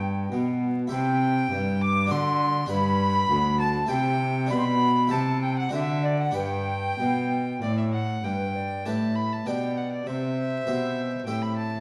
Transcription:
Already playing: G2 B3 G4 B4 G5
0.32 B2
0.88 E4 G4 C5
0.92 C3 G5
1.52 G2
1.81 D6
2.06 D4 F#4 A4
2.11 D3 C6
2.66 D4 G4 B4
2.70 G2 B5
3.30 D2
3.60 A5
3.86 C3 E4 G4 C5 G5
3.90 C3 G5
4.47 B2 D4 G4 D5 B5
4.51 B2 B5
4.58 C6
4.65 B5
5.07 C3 E4 G4 C5 A5
5.12 C3 A5
5.41 G5
5.58 F#5
5.69 D4 F#4 C5
5.73 D3 E5
6.03 D5
6.20 F#5
6.31 D4 G4 B4 G5
6.35 G2 G5
7.00 B2
7.62 A2 D5
7.78 E5
7.93 F#5
8.24 G2 B4 G5
8.56 D5
8.85 A2 D4 G4 B4 E5 A5
9.16 B5
9.32 A5
9.46 B2 D4 G4 D5 G5
9.77 F#5
9.92 D5
10.07 C3 C5 E5
10.67 B2 C4 G4 E5
11.26 A2 C4 G4 E5 G5
11.42 B5
11.57 A5

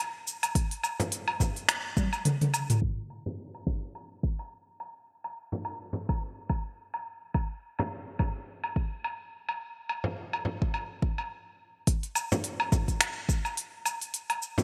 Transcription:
0.27 cabasa
0.43 open hi-hat, cabasa, low woodblock
0.55 kick, open hi-hat, cabasa
0.71 open hi-hat
0.84 cabasa, low woodblock
1.00 open hi-hat, frame drum, cabasa
1.12 open hi-hat, cabasa
1.28 low woodblock
1.40 kick, frame drum, cabasa
1.56 open hi-hat, cabasa
1.69 finger snap, open hi-hat, cabasa, low woodblock
1.97 kick, high tom, cabasa
2.13 cabasa, low woodblock
2.25 open hi-hat, mid tom, cabasa
2.41 open hi-hat, mid tom
2.54 cabasa, low woodblock
2.70 mid tom, open hi-hat, cabasa
2.82 kick
3.10 low woodblock
3.26 frame drum
3.55 low woodblock
3.67 kick, frame drum
3.95 low woodblock
4.23 kick
4.39 low woodblock
4.80 low woodblock
5.24 low woodblock
5.52 frame drum
5.65 low woodblock
5.93 frame drum
6.09 kick, low woodblock
6.50 kick, low woodblock
6.94 low woodblock
7.34 kick, low woodblock
7.79 frame drum, low woodblock
8.19 kick, frame drum, low woodblock
8.64 low woodblock
8.76 kick
9.04 low woodblock
9.49 low woodblock
9.89 low woodblock
10.04 frame drum
10.33 low woodblock
10.45 frame drum
10.62 kick
10.74 low woodblock
11.02 kick
11.18 low woodblock
11.87 kick, open hi-hat, cabasa
12.03 open hi-hat
12.15 cabasa, low woodblock
12.32 frame drum, cabasa
12.44 open hi-hat, cabasa
12.60 low woodblock
12.72 kick, frame drum, cabasa
12.88 kick, open hi-hat, cabasa
13.01 finger snap, open hi-hat, cabasa, low woodblock
13.29 kick, cabasa
13.45 cabasa, low woodblock
13.57 open hi-hat, cabasa
13.86 cabasa, low woodblock
14.02 open hi-hat, cabasa
14.14 open hi-hat, cabasa
14.30 open hi-hat, low woodblock
14.42 cabasa
14.58 frame drum, cabasa

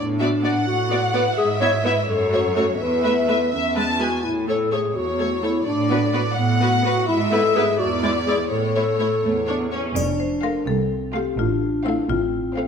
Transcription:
Already playing: A2 D4
0.19 B3 F#4 D5 E5
0.43 B3 F#4 D5 F#5
0.68 A2 F#4
0.90 B3 F#4 D5
1.13 B3 F#4 B4 D5
1.38 G#2 G#4 E5
1.60 B3 E4 C#5 E5
1.84 B3 E4 B4 E5
2.08 F#2 A4 C#5
2.31 A3 F#4 C#5
2.56 A3 F#4 A4 C#5
2.79 E2 B4 E5
3.03 A3 B4 E5
3.27 A3 B4 E5
3.52 E2 C#4 E5
3.75 G#3 B4 A5
3.99 G#3 F#4 B4 G#5
4.24 A2 E4
4.47 A3 A4 C#5
4.71 A3 G#4 A4 C#5
4.95 E2 F#4 C#5
5.19 A3 A4 C#5
5.42 A3 E4 A4 C#5
5.66 A2 D4 D5
5.90 B3 F#4 B4
6.13 B3 F#4 B4
6.37 A2 B3 F#5
6.61 B3 F#4 B4
6.84 B3 F#4 B4
7.08 G#2 E4 E5
7.31 B3 E4 A4 B4
7.55 B3 E4 G#4 B4
7.79 E2 F#4 D5
8.02 G#3 E4 D5
8.27 G#3 E4 G#4 D5
8.51 A2 A4 C#5
8.75 A3 E4 C#5
9.00 A3 E4 C#5
9.24 E2 A3
9.47 D4 C#5
9.71 C#4 C#5
9.95 F1 F2 D4 D5, triangle
10.20 C5
10.43 A3 F4 A#4 F5
10.67 C2 C4 A4
11.15 A3 F4 G4 F5
11.38 A1 A2 D4 F4
11.85 A3 C4 E4 F5
12.09 A1 A2 C4 F4
12.56 A3 C4 F5

